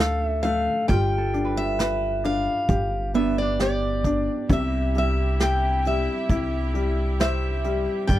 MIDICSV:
0, 0, Header, 1, 7, 480
1, 0, Start_track
1, 0, Key_signature, 0, "major"
1, 0, Tempo, 898204
1, 480, Time_signature, 4, 2, 24, 8
1, 4378, End_track
2, 0, Start_track
2, 0, Title_t, "Steel-string acoustic guitar"
2, 0, Program_c, 0, 25
2, 0, Note_on_c, 0, 77, 79
2, 139, Note_off_c, 0, 77, 0
2, 139, Note_on_c, 0, 76, 79
2, 222, Note_off_c, 0, 76, 0
2, 229, Note_on_c, 0, 77, 82
2, 469, Note_off_c, 0, 77, 0
2, 471, Note_on_c, 0, 79, 90
2, 815, Note_off_c, 0, 79, 0
2, 841, Note_on_c, 0, 76, 82
2, 1202, Note_off_c, 0, 76, 0
2, 1204, Note_on_c, 0, 77, 86
2, 1662, Note_off_c, 0, 77, 0
2, 1683, Note_on_c, 0, 76, 76
2, 1795, Note_off_c, 0, 76, 0
2, 1807, Note_on_c, 0, 74, 67
2, 1927, Note_off_c, 0, 74, 0
2, 1933, Note_on_c, 0, 74, 67
2, 2418, Note_on_c, 0, 76, 74
2, 2424, Note_off_c, 0, 74, 0
2, 2656, Note_off_c, 0, 76, 0
2, 2662, Note_on_c, 0, 76, 76
2, 2893, Note_off_c, 0, 76, 0
2, 2895, Note_on_c, 0, 79, 75
2, 3135, Note_off_c, 0, 79, 0
2, 3137, Note_on_c, 0, 76, 65
2, 3354, Note_off_c, 0, 76, 0
2, 3852, Note_on_c, 0, 76, 70
2, 4313, Note_off_c, 0, 76, 0
2, 4315, Note_on_c, 0, 79, 80
2, 4378, Note_off_c, 0, 79, 0
2, 4378, End_track
3, 0, Start_track
3, 0, Title_t, "String section"
3, 0, Program_c, 1, 48
3, 2401, Note_on_c, 1, 64, 56
3, 2402, Note_on_c, 1, 55, 58
3, 2402, Note_on_c, 1, 76, 66
3, 2403, Note_on_c, 1, 67, 58
3, 4300, Note_off_c, 1, 64, 0
3, 4301, Note_off_c, 1, 76, 0
3, 4302, Note_off_c, 1, 67, 0
3, 4323, Note_on_c, 1, 62, 61
3, 4324, Note_on_c, 1, 71, 62
3, 4328, Note_on_c, 1, 74, 73
3, 4378, Note_off_c, 1, 55, 0
3, 4378, Note_off_c, 1, 62, 0
3, 4378, Note_off_c, 1, 71, 0
3, 4378, Note_off_c, 1, 74, 0
3, 4378, End_track
4, 0, Start_track
4, 0, Title_t, "Harp"
4, 0, Program_c, 2, 46
4, 477, Note_on_c, 2, 65, 51
4, 629, Note_on_c, 2, 69, 48
4, 773, Note_on_c, 2, 71, 46
4, 1680, Note_on_c, 2, 59, 60
4, 1825, Note_off_c, 2, 65, 0
4, 1827, Note_on_c, 2, 62, 45
4, 1871, Note_off_c, 2, 69, 0
4, 2004, Note_off_c, 2, 71, 0
4, 3323, Note_off_c, 2, 62, 0
4, 3340, Note_off_c, 2, 59, 0
4, 4378, End_track
5, 0, Start_track
5, 0, Title_t, "Upright piano"
5, 0, Program_c, 3, 0
5, 0, Control_c, 3, 64, 127
5, 0, Note_on_c, 3, 50, 61
5, 0, Note_on_c, 3, 57, 46
5, 0, Note_on_c, 3, 62, 55
5, 0, Note_on_c, 3, 65, 55
5, 0, Note_on_c, 3, 69, 54
5, 229, Note_off_c, 3, 57, 0
5, 237, Note_on_c, 3, 57, 51
5, 457, Note_off_c, 3, 62, 0
5, 458, Note_off_c, 3, 50, 0
5, 463, Note_off_c, 3, 69, 0
5, 471, Note_off_c, 3, 57, 0
5, 473, Note_on_c, 3, 55, 63
5, 488, Control_c, 3, 64, 0
5, 491, Note_off_c, 3, 65, 0
5, 588, Control_c, 3, 64, 127
5, 714, Note_on_c, 3, 62, 46
5, 956, Note_on_c, 3, 71, 51
5, 1188, Note_off_c, 3, 62, 0
5, 1196, Note_on_c, 3, 62, 47
5, 1439, Note_on_c, 3, 67, 50
5, 1676, Note_off_c, 3, 62, 0
5, 1684, Note_on_c, 3, 62, 45
5, 1899, Note_off_c, 3, 71, 0
5, 1913, Note_off_c, 3, 67, 0
5, 1921, Note_on_c, 3, 67, 53
5, 2158, Note_off_c, 3, 62, 0
5, 2167, Note_on_c, 3, 62, 50
5, 2380, Note_off_c, 3, 55, 0
5, 2389, Note_off_c, 3, 67, 0
5, 2399, Note_off_c, 3, 62, 0
5, 2406, Note_on_c, 3, 48, 59
5, 2411, Control_c, 3, 64, 0
5, 2492, Control_c, 3, 64, 127
5, 2649, Note_on_c, 3, 55, 48
5, 2887, Note_on_c, 3, 67, 50
5, 3124, Note_off_c, 3, 55, 0
5, 3132, Note_on_c, 3, 55, 46
5, 3369, Note_on_c, 3, 64, 51
5, 3594, Note_off_c, 3, 55, 0
5, 3602, Note_on_c, 3, 55, 47
5, 3822, Note_off_c, 3, 67, 0
5, 3848, Note_on_c, 3, 72, 52
5, 4078, Note_off_c, 3, 55, 0
5, 4086, Note_on_c, 3, 55, 50
5, 4301, Note_off_c, 3, 48, 0
5, 4303, Note_off_c, 3, 64, 0
5, 4310, Note_off_c, 3, 72, 0
5, 4316, Note_off_c, 3, 55, 0
5, 4324, Note_on_c, 3, 55, 64
5, 4328, Control_c, 3, 64, 0
5, 4378, Note_off_c, 3, 55, 0
5, 4378, End_track
6, 0, Start_track
6, 0, Title_t, "Upright bass"
6, 0, Program_c, 4, 32
6, 0, Note_on_c, 4, 38, 81
6, 356, Note_off_c, 4, 38, 0
6, 477, Note_on_c, 4, 31, 91
6, 1316, Note_off_c, 4, 31, 0
6, 1438, Note_on_c, 4, 31, 80
6, 2279, Note_off_c, 4, 31, 0
6, 2403, Note_on_c, 4, 36, 94
6, 3241, Note_off_c, 4, 36, 0
6, 3364, Note_on_c, 4, 36, 84
6, 4199, Note_off_c, 4, 36, 0
6, 4325, Note_on_c, 4, 31, 89
6, 4378, Note_off_c, 4, 31, 0
6, 4378, End_track
7, 0, Start_track
7, 0, Title_t, "Drums"
7, 0, Note_on_c, 9, 38, 85
7, 54, Note_off_c, 9, 38, 0
7, 236, Note_on_c, 9, 42, 49
7, 289, Note_off_c, 9, 42, 0
7, 476, Note_on_c, 9, 42, 64
7, 477, Note_on_c, 9, 36, 85
7, 529, Note_off_c, 9, 42, 0
7, 530, Note_off_c, 9, 36, 0
7, 716, Note_on_c, 9, 42, 48
7, 769, Note_off_c, 9, 42, 0
7, 956, Note_on_c, 9, 42, 64
7, 961, Note_on_c, 9, 38, 81
7, 1009, Note_off_c, 9, 42, 0
7, 1015, Note_off_c, 9, 38, 0
7, 1198, Note_on_c, 9, 42, 46
7, 1251, Note_off_c, 9, 42, 0
7, 1434, Note_on_c, 9, 42, 65
7, 1437, Note_on_c, 9, 36, 66
7, 1488, Note_off_c, 9, 42, 0
7, 1490, Note_off_c, 9, 36, 0
7, 1678, Note_on_c, 9, 42, 48
7, 1732, Note_off_c, 9, 42, 0
7, 1920, Note_on_c, 9, 42, 64
7, 1925, Note_on_c, 9, 38, 79
7, 1973, Note_off_c, 9, 42, 0
7, 1979, Note_off_c, 9, 38, 0
7, 2161, Note_on_c, 9, 36, 55
7, 2161, Note_on_c, 9, 42, 47
7, 2214, Note_off_c, 9, 36, 0
7, 2214, Note_off_c, 9, 42, 0
7, 2402, Note_on_c, 9, 36, 81
7, 2402, Note_on_c, 9, 42, 60
7, 2455, Note_off_c, 9, 42, 0
7, 2456, Note_off_c, 9, 36, 0
7, 2643, Note_on_c, 9, 42, 43
7, 2697, Note_off_c, 9, 42, 0
7, 2883, Note_on_c, 9, 42, 60
7, 2888, Note_on_c, 9, 38, 84
7, 2936, Note_off_c, 9, 42, 0
7, 2942, Note_off_c, 9, 38, 0
7, 3125, Note_on_c, 9, 42, 43
7, 3178, Note_off_c, 9, 42, 0
7, 3363, Note_on_c, 9, 42, 60
7, 3364, Note_on_c, 9, 36, 66
7, 3417, Note_off_c, 9, 36, 0
7, 3417, Note_off_c, 9, 42, 0
7, 3606, Note_on_c, 9, 42, 43
7, 3660, Note_off_c, 9, 42, 0
7, 3846, Note_on_c, 9, 42, 57
7, 3851, Note_on_c, 9, 38, 81
7, 3899, Note_off_c, 9, 42, 0
7, 3904, Note_off_c, 9, 38, 0
7, 4083, Note_on_c, 9, 42, 45
7, 4137, Note_off_c, 9, 42, 0
7, 4323, Note_on_c, 9, 42, 63
7, 4324, Note_on_c, 9, 36, 85
7, 4377, Note_off_c, 9, 36, 0
7, 4377, Note_off_c, 9, 42, 0
7, 4378, End_track
0, 0, End_of_file